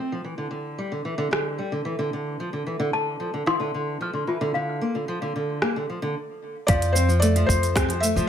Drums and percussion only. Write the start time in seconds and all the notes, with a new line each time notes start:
1.33 cross-stick
3.47 cross-stick
5.62 cross-stick
6.68 kick, closed hi-hat, cabasa
6.82 closed hi-hat, cabasa
6.96 cabasa
7.09 cabasa
7.22 closed hi-hat, cabasa
7.36 closed hi-hat, cabasa
7.49 kick, cabasa
7.63 closed hi-hat, cabasa
7.76 kick, cross-stick, closed hi-hat, cabasa
7.90 closed hi-hat, cabasa
8.03 cabasa
8.17 cabasa